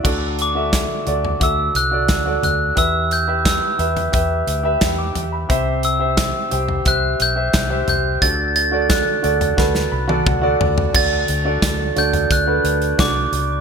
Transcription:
<<
  \new Staff \with { instrumentName = "Glockenspiel" } { \time 4/4 \key d \mixolydian \tempo 4 = 88 r8 d'''4. e'''8 fis'''4 fis'''8 | e'''8 g'''8 e'''4. r4. | r8 e'''4. fis'''8 g'''4 g'''8 | a'''8 a'''8 fis'''4. r4. |
a'''4. g'''8 fis'''4 d'''4 | }
  \new Staff \with { instrumentName = "Grand piano" } { \time 4/4 \key d \mixolydian << { r1 | r2. e'''16 d'''8 b''16~ | b''16 r2. r8. | r2 r8 b''16 a''16 fis''8 d''8 |
r1 | } \\ { <fis' a' d''>8. <fis' a' e''>8. <fis' a' d''>8 <fis' a' e''>8. <fis' a' d''>8 <fis' a' d''>8. | <g' b' e''>8. <g' b' e''>8. <g' b' e''>8 <g' b' e''>8. <g' b' e''>8 r8. | <g' c'' e''>8. <g' c'' e''>8. <g' c'' g''>8 <g' c'' e''>8. <g' c'' e''>8 <g' c'' e''>8. | <fis' a' d''>8. <fis' a' d''>8. <fis' a' d''>8 <fis' a' b'>8. <fis' a' d''>8 <fis' a' d''>8. |
<d' fis' a' d''>8. <d' fis' a' d''>8. <d' fis' a' d''>8. <d' fis' a' b'>8. <d' fis' a' d''>8. r16 | } >> }
  \new Staff \with { instrumentName = "Grand piano" } { \clef bass \time 4/4 \key d \mixolydian d4. r2 r8 | e4. r2 r8 | c4. r2 r8 | d4. r2 r8 |
d4. r2 r8 | }
  \new Staff \with { instrumentName = "Fingered electric bass" } { \clef bass \time 4/4 \key d \mixolydian d,4~ d,16 r16 d,8 d,8 c,8 d,8 d,8 | e,4~ e,16 r16 e,8 e,8 d,8 e,8 e,8 | c,4~ c,16 r16 c,8 c,8 b,,8 c,8 c,8 | d,4~ d,16 r16 d,8 d,8 c,8 d,8 d,8 |
d,8 d,8 d,8 d,8 d,8 d,8 c,8 cis,8 | }
  \new DrumStaff \with { instrumentName = "Drums" } \drummode { \time 4/4 <cymc bd>8 hh8 <hh bd sn>8 hh16 tomfh16 <hh bd>8 hh8 <hh bd sn>8 <hh tomfh>8 | <hh bd>8 hh8 <hh bd sn>8 hh16 <hh tomfh>16 <hh bd>8 hh8 <hh bd sn>8 <hh tomfh>8 | <hh bd>8 hh8 <hh bd sn>8 hh16 tomfh16 <hh bd>8 hh8 <hh bd sn>8 <hh tomfh>8 | <hh bd>8 hh8 <hh bd sn>8 hh16 <hh tomfh>16 <bd sn>16 sn8 tommh16 <bd toml>8 tomfh16 tomfh16 |
<cymc bd>8 hh8 <hh bd sn>8 hh16 <hh tomfh>16 <hh bd>8 hh16 hh16 <hh bd sn>8 hh8 | }
>>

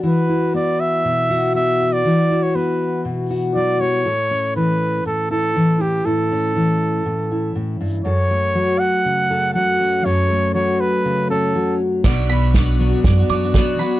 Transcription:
<<
  \new Staff \with { instrumentName = "Mandolin" } { \time 4/4 \key b \minor \tempo 4 = 120 r1 | r1 | r1 | r1 |
r1 | r1 | d''8 b''8 d''4 d''8 d'''8 d''8 b''8 | }
  \new Staff \with { instrumentName = "Trumpet" } { \time 4/4 \key b \minor b'4 d''8 e''4. e''8. d''16~ | d''8. cis''16 b'4 r4 d''8 cis''8~ | cis''4 b'4 a'8 a'4 g'8 | a'2. r4 |
cis''4. fis''4. fis''4 | cis''4 cis''8 b'4 a'4 r8 | r1 | }
  \new Staff \with { instrumentName = "Twelve-string acoustic guitar" } { \time 4/4 \key b \minor r1 | r1 | r1 | r1 |
r1 | r1 | <b, fis b d' fis' cis''>8 <b d' fis' cis''>8 <b, fis b d' fis' cis''>8 <b d' fis' cis''>16 <b d' fis' cis''>8 <b d' fis' cis''>16 <b d' fis' cis''>16 <b d' fis' cis''>16 <b, fis b d' fis' cis''>8 <b d' fis' cis''>8 | }
  \new Staff \with { instrumentName = "Steel-string acoustic guitar" } { \clef bass \time 4/4 \key b \minor << { fis'8 e'2 fis'4 fis'8 | fis'8 e'2 fis'4. | a'8 cis'2 e'4 e'8 | e'8 cis'2 e'4. |
a'8 a2 a'4 cis'8 | a'8 a2 cis'4 r8 | r4 d'4. d'4. | } \\ { e4 b4 b,4 b4 | e4 b4 b,4 fis8 g8 | a,4 e4 a,4 e4 | a,4 e4 a,4 a,8 g,8 |
fis,4 fis4 cis4 fis4 | fis,4 fis4 cis4 fis4 | b,4. fis8 fis,4. fis8 | } >> }
  \new Staff \with { instrumentName = "Upright bass" } { \clef bass \time 4/4 \key b \minor r1 | r1 | r1 | r1 |
r1 | r1 | b,,2 fis,8 fis,8 r4 | }
  \new DrumStaff \with { instrumentName = "Drums" } \drummode { \time 4/4 r4 r4 r4 r4 | r4 r4 r4 r4 | r4 r4 r4 r4 | r4 r4 r4 r4 |
r4 r4 r4 r4 | r4 r4 r4 r4 | <cymc bd sn>4 <bd sn>4 <bd sn>4 <bd sn>4 | }
>>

